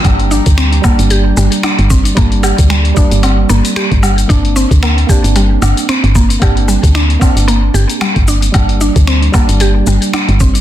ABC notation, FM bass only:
X:1
M:4/4
L:1/16
Q:"Swing 16ths" 1/4=113
K:Gm
V:1 name="FM bass" clef=bass
G,,,3 D,,3 z G,,,3 G,,, z2 G,,,3 | G,,,3 D,,3 z G,,,3 G,,, z2 G,,,3 | G,,,3 D,,3 z G,,,3 G,,, z2 G,,,3 | G,,,3 D,,3 z G,,,3 G,,, z2 G,,,3 |
G,,,3 D,,3 z G,,,3 G,,, z2 G,,,3 |]